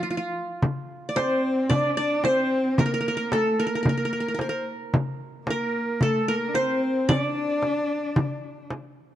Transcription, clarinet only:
0, 0, Header, 1, 2, 480
1, 0, Start_track
1, 0, Tempo, 538600
1, 553, Time_signature, 4, 2, 24, 8
1, 8155, End_track
2, 0, Start_track
2, 0, Title_t, "Clarinet"
2, 0, Program_c, 0, 71
2, 0, Note_on_c, 0, 65, 69
2, 321, Note_off_c, 0, 65, 0
2, 1039, Note_on_c, 0, 72, 82
2, 1259, Note_off_c, 0, 72, 0
2, 1275, Note_on_c, 0, 72, 69
2, 1528, Note_on_c, 0, 74, 77
2, 1542, Note_off_c, 0, 72, 0
2, 1756, Note_off_c, 0, 74, 0
2, 1762, Note_on_c, 0, 74, 82
2, 1997, Note_on_c, 0, 72, 79
2, 2010, Note_off_c, 0, 74, 0
2, 2473, Note_off_c, 0, 72, 0
2, 2478, Note_on_c, 0, 70, 75
2, 2954, Note_on_c, 0, 69, 71
2, 2967, Note_off_c, 0, 70, 0
2, 3202, Note_on_c, 0, 70, 74
2, 3215, Note_off_c, 0, 69, 0
2, 3917, Note_on_c, 0, 72, 62
2, 3930, Note_off_c, 0, 70, 0
2, 4156, Note_off_c, 0, 72, 0
2, 4884, Note_on_c, 0, 70, 71
2, 5363, Note_on_c, 0, 69, 70
2, 5376, Note_off_c, 0, 70, 0
2, 5598, Note_on_c, 0, 70, 77
2, 5611, Note_off_c, 0, 69, 0
2, 5846, Note_on_c, 0, 72, 83
2, 5860, Note_off_c, 0, 70, 0
2, 6074, Note_off_c, 0, 72, 0
2, 6079, Note_on_c, 0, 72, 76
2, 6312, Note_on_c, 0, 74, 88
2, 6325, Note_off_c, 0, 72, 0
2, 7754, Note_off_c, 0, 74, 0
2, 8155, End_track
0, 0, End_of_file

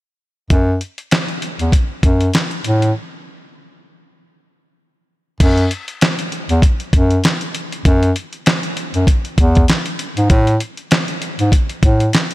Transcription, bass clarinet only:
0, 0, Header, 1, 2, 480
1, 0, Start_track
1, 0, Tempo, 612245
1, 396, Time_signature, 4, 2, 24, 8
1, 9676, End_track
2, 0, Start_track
2, 0, Title_t, "Bass clarinet"
2, 0, Program_c, 0, 71
2, 397, Note_on_c, 0, 42, 102
2, 605, Note_off_c, 0, 42, 0
2, 1257, Note_on_c, 0, 40, 84
2, 1346, Note_off_c, 0, 40, 0
2, 1594, Note_on_c, 0, 42, 93
2, 1804, Note_off_c, 0, 42, 0
2, 2080, Note_on_c, 0, 45, 97
2, 2287, Note_off_c, 0, 45, 0
2, 4237, Note_on_c, 0, 42, 104
2, 4446, Note_off_c, 0, 42, 0
2, 5097, Note_on_c, 0, 40, 95
2, 5185, Note_off_c, 0, 40, 0
2, 5435, Note_on_c, 0, 42, 98
2, 5644, Note_off_c, 0, 42, 0
2, 6159, Note_on_c, 0, 42, 110
2, 6367, Note_off_c, 0, 42, 0
2, 7017, Note_on_c, 0, 42, 90
2, 7106, Note_off_c, 0, 42, 0
2, 7355, Note_on_c, 0, 40, 103
2, 7565, Note_off_c, 0, 40, 0
2, 7977, Note_on_c, 0, 44, 93
2, 8066, Note_off_c, 0, 44, 0
2, 8078, Note_on_c, 0, 45, 109
2, 8286, Note_off_c, 0, 45, 0
2, 8937, Note_on_c, 0, 44, 91
2, 9026, Note_off_c, 0, 44, 0
2, 9275, Note_on_c, 0, 45, 94
2, 9484, Note_off_c, 0, 45, 0
2, 9676, End_track
0, 0, End_of_file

